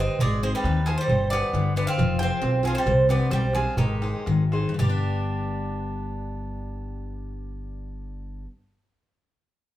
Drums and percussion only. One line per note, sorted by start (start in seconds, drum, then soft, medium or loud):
0.19 darbuka dum medium
0.64 darbuka tek medium
0.88 darbuka tek medium
0.98 darbuka tek soft
1.08 darbuka dum medium
1.32 darbuka tek medium
1.43 darbuka tek soft
1.54 darbuka tek medium
1.77 darbuka tek medium
1.99 darbuka dum loud
2.21 darbuka tek medium
2.32 darbuka tek soft
2.43 darbuka tek medium
2.64 darbuka tek medium
2.87 darbuka dum loud
3.09 darbuka tek medium
3.21 darbuka tek soft
3.31 darbuka tek medium
3.53 darbuka tek medium
3.77 darbuka dum medium
3.90 darbuka tek soft
4.02 darbuka tek medium
4.14 darbuka tek soft
4.26 darbuka tek medium
4.52 darbuka tek medium
4.79 darbuka dum medium